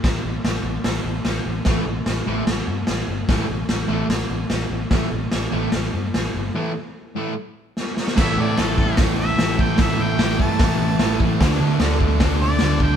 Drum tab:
CC |----------------|----------------|----------------|----------------|
HH |o---o---o---o---|o---o---o---o---|o---o---o---o---|o---o---o---o---|
SD |o---o---o---o---|o---o---o---o---|o---o---o---o---|o---o---o---o---|
BD |o---------------|o---------------|o---------------|o---------------|

CC |----------------|x---------------|----------------|----------------|
HH |----------------|----o---o---o---|o---o---o---o---|o---o---o---o---|
SD |------------o-oo|o---o---o---o---|o---o---o---o---|o---o---o---o---|
BD |----------------|o-----o-o-----o-|o-----o-o-----o-|o-----o-o-----o-|